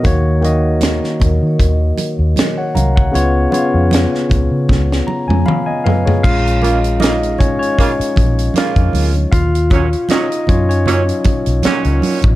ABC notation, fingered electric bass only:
X:1
M:4/4
L:1/16
Q:"Swing 16ths" 1/4=78
K:A#phr
V:1 name="Fingered electric bass" clef=bass
D,,4- D,, z D,, D, D,,2 z D,, z2 ^B,,,2 | C,,2 z E,,2 z C,, C, C,,2 z E,, z4 | A,,,6 G,,,2 z2 A,,,2 z E,, =D,,2 | D,,4 z2 F,,4 z B,,, z C,, z =A,,, |]